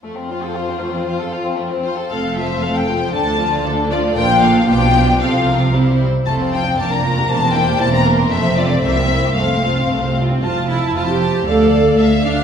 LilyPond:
<<
  \new Staff \with { instrumentName = "Violin section" } { \time 2/4 \key f \major \tempo 4 = 116 c''2~ | c''4. c''8 | f''8 e''8 f''16 g''8. | a''4 r8 d''8 |
g''8 f''8 g''4 | f''4 r4 | a''8 g''8 a''16 bes''8. | a''8 g''8 a''16 bes''16 bes'8 |
e''8 d''8 e''4 | f''4. r8 | a''8 a''8 a''8 a''8 | f''8 f''8 f''8 f''8 | }
  \new Staff \with { instrumentName = "Violin section" } { \time 2/4 \key f \major << { a16 c'16 f'16 a'16 f'16 c'16 a16 c'16 | f'16 a'16 f'16 c'16 a16 c'16 f'16 a'16 | a'8 c''8 a'8 c''8 | a'8 d''8 a'8 d''8 |
bes'8 a'8 g'4 | a'8 bes'8 c''8 r8 | c''4 bes'4 | c''2~ |
c''2 | c''4. r8 | r4 c''4 | d''4 e''8 f''8 | } \\ { r2 | r2 | a'8 f'8 a'8 f'8 | d'8 f'8 d'8 f'8 |
f'4 f'4 | f'4 e'8 r8 | a16 c'16 f'16 c'16 bes16 d'16 f'16 g'16 | bes16 c'16 e'16 g'16 e'16 c'16 bes16 c'16 |
a16 c'16 f'16 c'16 bes16 c'16 e'16 g'16 | a16 c'16 f'16 c'16 a16 c'16 f'16 c'16 | r2 | r2 | } >> }
  \new Staff \with { instrumentName = "Viola section" } { \time 2/4 \key f \major << { r2 | r2 | c'8 a8 c'8 a8 | d'8 a8 d'8 a8 |
d'4 d'4 | c'4 c'8 r8 | c'4 d'4~ | d'2 |
c'2 | c'4. c'8 | f'8 e'8 f'16 g'8. | a'4 r8 d'8 | } \\ { f'2~ | f'4. r8 | a8 f8 a8 f8 | d8 f8 d8 f8 |
f4 f4 | f4 g8 r8 | f4 bes4~ | bes2 |
a4 bes4 | a4. r8 | r2 | r2 | } >> }
  \new Staff \with { instrumentName = "Cello section" } { \clef bass \time 2/4 \key f \major f,2~ | f,4. r8 | f,2 | d,2 |
bes,4 b,4 | c4. r8 | f,4 f,4 | e,4 e,4 |
f,4 c,4 | f,4 c,4 | f,4 f,4 | d,4 d,4 | }
  \new Staff \with { instrumentName = "Double bass section" } { \clef bass \time 2/4 \key f \major r2 | r2 | f,,2 | d,2 |
bes,,4 b,,4 | c,4. r8 | f,,4 f,,4 | e,,4 e,,4 |
f,,4 c,4 | f,,4 c,4 | f,,4 f,,4 | d,4 d,4 | }
>>